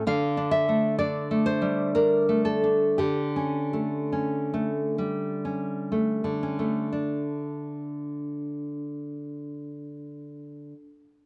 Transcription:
0.07 2.95 D3 medium
0.07 0.50 F5 medium
0.37 0.98 D4 soft
0.51 0.96 E5 medium
0.69 1.30 A3 soft
0.99 1.94 D4 soft
0.99 1.44 D5 medium
1.31 2.28 A3 soft
1.46 1.93 C5 medium
1.62 2.99 G3 soft
1.95 2.63 D4 soft
1.95 2.44 A#4 medium
2.29 2.99 A3 soft
2.45 2.96 A4 medium
2.64 2.99 D4 soft
2.98 6.23 D3 medium
2.98 6.12 G4 medium
3.36 4.11 C#4 soft
3.73 4.52 A3 soft
4.13 5.44 C#4 soft
4.54 5.91 A3 soft
4.98 6.92 G3 soft
5.45 6.42 C#4 soft
5.92 6.58 A3 soft
6.24 10.73 D3 soft
6.43 6.92 C#4 soft
6.59 11.07 A3 soft
6.93 11.26 D4 soft

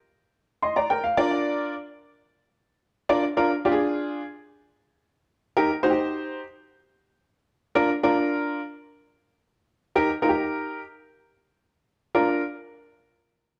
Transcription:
0.62 0.76 D#5 medium
0.62 0.75 C6 medium
0.76 0.89 D5 medium
0.76 0.89 A#5 medium
0.90 1.03 A#4 medium
0.90 1.03 G5 medium
1.04 1.29 F5 medium
1.17 1.73 D4 medium
1.17 1.73 F4 medium
1.17 1.73 A#4 medium
1.17 1.73 D5 loud
3.09 3.23 D4 medium
3.09 3.23 F4 medium
3.09 3.23 A#4 medium
3.09 3.23 D5 loud
3.37 3.50 D4 medium
3.37 3.50 F4 medium
3.37 3.50 A#4 medium
3.65 4.20 D4 medium
3.65 4.20 F4 medium
3.65 3.71 G4 medium
3.72 4.23 G#4 medium
5.57 5.70 D#4 medium
5.57 5.70 G4 medium
5.57 5.70 A#4 loud
5.83 6.39 D#4 medium
5.83 5.90 F#4 medium
5.83 6.39 C5 loud
5.90 6.42 G4 medium
7.75 7.89 D4 medium
7.75 7.89 F4 medium
7.75 7.89 A#4 medium
8.03 8.59 D4 medium
8.03 8.59 F4 medium
8.03 8.59 A#4 medium
9.96 10.09 D#4 medium
9.96 10.09 G4 medium
9.96 10.09 A#4 loud
10.22 10.78 D#4 medium
10.22 10.29 F4 medium
10.22 10.78 A#4 medium
10.29 10.82 G4 medium
12.15 12.41 D4 medium
12.15 12.40 F4 medium
12.15 12.41 A#4 medium

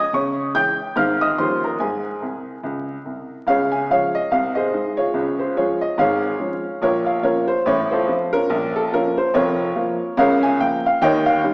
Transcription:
0.00 0.11 D#5 medium
0.00 0.12 D#6 medium
0.13 0.48 C#3 medium
0.13 0.52 C#5 medium
0.13 0.55 C#6 medium
0.54 0.77 E3 soft
0.54 0.77 G#3 soft
0.54 0.77 C#4 soft
0.54 0.93 G5 medium
0.54 0.96 G6 medium
0.96 1.31 G#2 medium
0.96 1.19 D#3 soft
0.96 1.19 G#3 soft
0.96 1.20 C4 medium
0.96 1.19 F5 medium
0.96 1.20 F6 medium
1.21 1.37 D#5 medium
1.21 1.38 D#6 medium
1.38 1.73 D#2 medium
1.38 1.61 F3 soft
1.38 1.61 G3 soft
1.38 1.61 C#4 soft
1.38 1.61 C5 medium
1.38 1.62 C6 medium
1.64 1.80 A#4 soft
1.64 1.80 A#5 medium
1.80 2.15 G#2 medium
1.80 3.02 G#4 medium
1.80 3.05 G#5 medium
2.22 2.53 C2 soft
2.64 2.95 C#2 medium
3.05 3.37 C2 soft
3.47 3.82 C#2 medium
3.47 3.83 C#3 medium
3.47 3.70 G#4 medium
3.47 3.71 C#5 medium
3.47 3.71 F5 loud
3.72 3.89 G#5 medium
3.90 4.13 F3 soft
3.90 4.13 G#3 soft
3.90 4.13 C#4 soft
3.90 4.13 G#4 medium
3.90 4.13 C#5 medium
3.90 4.14 F5 medium
4.15 4.31 D#5 medium
4.31 4.66 C2 medium
4.31 4.67 C3 medium
4.31 4.55 F5 medium
4.55 4.94 G#4 medium
4.55 4.95 C5 medium
4.55 4.97 D#5 medium
4.73 4.96 G#3 soft
4.73 4.96 D#4 soft
4.97 5.37 F4 medium
4.97 5.37 G#4 medium
4.97 5.39 C#5 medium
5.14 5.50 C#2 medium
5.14 5.50 C#3 medium
5.39 5.56 C5 medium
5.56 5.79 F3 soft
5.56 5.79 G#3 soft
5.56 5.80 C#4 medium
5.56 5.80 F4 medium
5.56 5.80 G#4 medium
5.56 5.81 C#5 medium
5.81 5.98 D#5 medium
5.98 6.34 G#1 medium
5.98 6.33 G#2 medium
5.98 6.79 G#4 medium
5.98 6.79 C#5 medium
5.98 6.82 F5 medium
6.39 6.62 F3 soft
6.39 6.63 G#3 soft
6.39 6.63 C#4 medium
6.82 7.17 A#1 medium
6.82 7.17 A#2 medium
6.82 7.05 F4 medium
6.82 7.05 A#4 medium
6.82 7.06 C#5 medium
7.06 7.24 F5 medium
7.23 7.46 F3 medium
7.23 7.46 A#3 soft
7.23 7.46 C#4 soft
7.23 7.47 F4 medium
7.23 7.47 A#4 medium
7.23 7.48 C#5 medium
7.48 7.65 C5 medium
7.66 8.01 A1 medium
7.66 8.01 A2 medium
7.66 7.91 C#5 medium
7.91 8.07 F4 medium
7.91 8.30 A4 medium
7.91 8.32 C5 medium
8.08 8.31 F3 soft
8.08 8.31 C4 soft
8.08 8.31 F4 soft
8.33 8.72 C#4 medium
8.33 8.72 F4 medium
8.33 8.74 A#4 medium
8.50 8.85 A#1 medium
8.50 8.85 A#2 medium
8.76 8.92 A4 medium
8.93 9.15 F3 medium
8.93 9.16 A#3 medium
8.93 9.16 C#4 medium
8.93 9.15 F4 medium
8.93 9.17 A#4 medium
9.18 9.34 C5 medium
9.34 9.69 F1 medium
9.34 9.69 F2 medium
9.34 9.75 F4 medium
9.34 10.14 A#4 medium
9.34 10.17 C#5 loud
9.76 9.99 F3 medium
9.76 9.98 A#3 medium
9.76 9.99 F4 medium
10.17 10.52 C#2 medium
10.17 10.53 C#3 loud
10.17 10.41 A#4 medium
10.17 10.41 C#5 medium
10.17 10.42 F5 loud
10.43 10.59 G#5 medium
10.61 10.83 F3 soft
10.61 10.83 A#3 medium
10.61 10.83 F4 medium
10.61 10.84 G5 medium
10.86 11.02 F5 medium
11.02 11.36 D#2 medium
11.02 11.36 D#3 loud
11.02 11.25 C#5 medium
11.02 11.25 D#5 medium
11.02 11.25 G5 loud
11.26 11.54 F5 medium
11.43 11.54 G3 medium
11.43 11.54 C#4 medium
11.43 11.54 D#4 medium

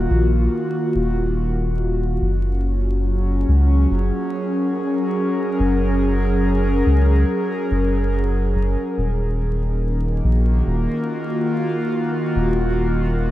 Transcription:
0.00 2.22 D#3 medium
0.00 4.33 A#3 medium
0.00 4.94 F4 medium
0.00 4.94 F#4 medium
0.10 0.48 A#1 medium
0.95 2.18 D#1 medium
2.21 3.45 F#1 medium
2.21 8.98 F#3 medium
2.32 11.19 C#4 medium
3.05 11.70 G#4 medium
3.48 3.86 C#2 medium
3.91 4.11 F#1 medium
4.05 11.39 A#4 medium
5.60 6.83 F#1 medium
6.86 7.24 C#2 medium
7.71 8.55 F#1 medium
8.56 8.76 F#1 loud
8.97 10.21 D#1 medium
8.97 13.31 D#3 medium
9.44 13.31 A#3 medium
9.84 13.31 F#4 medium
10.20 13.31 F4 medium
10.24 10.62 A#1 medium
10.67 10.87 D#1 medium
12.36 13.31 D#1 medium

